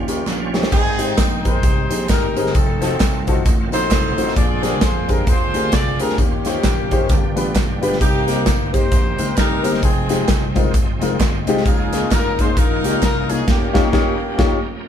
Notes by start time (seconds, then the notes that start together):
Already playing: D#2 D#3 F3 G3 C#4
0.08 C#4 D#4 G4 A#4, closed hi-hat, tambourine
0.26 A#1, snare, clap, tambourine
0.53 C#4 D#4 G4 C5, snare, tambourine
0.63 snare
0.71 G#1 G#2 D#3 G#3 C4 D#4 G#4 G5, kick, crash, tambourine
0.98 C4 D#4 G4 G#4 C5, closed hi-hat, tambourine
1.18 A#1, kick, snare, clap, closed hi-hat, tambourine
1.45 C4 D#4 G4 G#4 A#4 C5, kick, closed hi-hat, tambourine
1.63 C2, kick, closed hi-hat, tambourine
1.90 A#1 C4 D#4 G4 G#4 C5, closed hi-hat, tambourine
2.08 G#1 D#4 G4 A#4, kick, snare, clap, closed hi-hat, tambourine
2.36 G1 C4 D#4 G4 G#4 C5, closed hi-hat, tambourine
2.46 snare
2.54 F1 D#3 F#3 A3 C4 D#4 A4, kick, closed hi-hat, tambourine
2.60 F4
2.81 C4 D#4 F4 F#4 A4, snare, closed hi-hat, tambourine
3.00 C2, kick, snare, clap, closed hi-hat, tambourine
3.27 C4 D#4 F4 F#4 A4, kick, closed hi-hat, tambourine
3.46 A1, kick, closed hi-hat, tambourine
3.72 A#1 C4 D#4 F4 F#4 A4 C5, closed hi-hat, tambourine
3.90 C2, kick, snare, clap, closed hi-hat, tambourine
4.18 A1 C4 D#4 F4 F#4 C5, closed hi-hat, tambourine
4.28 snare
4.36 A#1 A#2 D3 G#3 A#3 C4 F4 G#4 D5 G5, kick, closed hi-hat, tambourine
4.62 C4 D4 G4 G#4 A#4 D5, snare, closed hi-hat, tambourine
4.81 F2 C5, kick, snare, clap, closed hi-hat, tambourine
5.08 C4 D4 G4 G#4 A#4, kick, closed hi-hat, tambourine
5.27 D#2 F4 G#4 C5, kick, closed hi-hat, tambourine
5.54 D2 C4 D4 G4 G#4 A#4, closed hi-hat, tambourine
5.72 C2 D5, kick, snare, clap, closed hi-hat, tambourine
6.00 D2 C4 D4 G4 G#4 A#4 C5, closed hi-hat, tambourine
6.09 snare
6.18 D#2 D#3 F#3 A#3 C#4 F4 G4 C5, kick, closed hi-hat, tambourine
6.24 G3
6.45 C#4 D#4 F4 G4 C5, snare, closed hi-hat, tambourine
6.63 A#1, kick, snare, clap, closed hi-hat, tambourine
6.91 C#4 D#4 F4 G4 C5, kick, closed hi-hat, tambourine
7.09 G1 G2 B2 D3 F3 G3 G4, kick, clap, closed hi-hat, tambourine
7.36 A1 B3 D4 F4 G4 B4, closed hi-hat, tambourine
7.55 B1, kick, snare, clap, closed hi-hat, tambourine
7.81 G1 B3 D4 F4 G4 B4, closed hi-hat, tambourine
7.92 snare
8.00 C2 C3 C#3 G3 A#3 C4 D#4 G4, kick, closed hi-hat, tambourine
8.06 D#3
8.27 A#3 C4 D#4 G4 A#4, snare, closed hi-hat, tambourine
8.46 G1, kick, snare, clap, closed hi-hat, tambourine
8.73 A#3 C4 D#4 G4 C5, kick, closed hi-hat, tambourine
8.92 A#1, kick, closed hi-hat, tambourine
9.18 C#2 A#3 C4 D#4 G4 A#4, closed hi-hat, tambourine
9.36 C2 D#4 G4 A#4, kick, snare, clap, closed hi-hat, tambourine
9.63 G1 A#3 C4 D#4 G4 C5, closed hi-hat, tambourine
9.74 snare
9.82 F1 F3 G#3 C4 D#4 G#4 G5, kick, closed hi-hat, tambourine
10.09 G#3 C4 D#4 F4 G4, snare, closed hi-hat, tambourine
10.28 C2, kick, snare, clap, closed hi-hat, tambourine
10.55 G#3 C4 D#4 F4 A#4, kick, closed hi-hat, tambourine
10.74 G#1, kick, closed hi-hat, tambourine
11.01 F1 G#3 C4 D#4 F4 A#4, closed hi-hat, tambourine
11.20 G1, kick, snare, clap, closed hi-hat, tambourine
11.46 C2 G#3 C4 D#4 F4 G4, closed hi-hat, tambourine
11.57 snare
11.65 C#2 C#3 F3 A#3 C#4 D#4 F4 G#4, kick, closed hi-hat, tambourine
11.92 A#3 C#4 D#4 F4 G#4, snare, closed hi-hat, tambourine
12.11 G#1 A#4, kick, snare, clap, closed hi-hat, tambourine
12.39 A#3 C#4 D#4 F4 G#4 C5, kick, closed hi-hat, tambourine
12.57 A#1 D#4 F4 A#4, kick, closed hi-hat, tambourine
12.84 C#2 A#3 C#4 D#4 F4 G4, closed hi-hat, tambourine
13.02 C2 A#4, kick, snare, clap, closed hi-hat, tambourine
13.29 A#3 C#4 D#4 F4 G#4 A#4, closed hi-hat, tambourine
13.47 D#2 F3 A#3 C#4 D#4 F#4 G4, kick, snare, crash
13.52 G4
13.73 D#2 A#3 C#4 D#4 F4 G4, kick, snare
13.92 D#2 A#3 C#4 D#4 F4 G4, kick, snare
14.38 D#2 A#3 C#4 D#4 F4 G4, kick, snare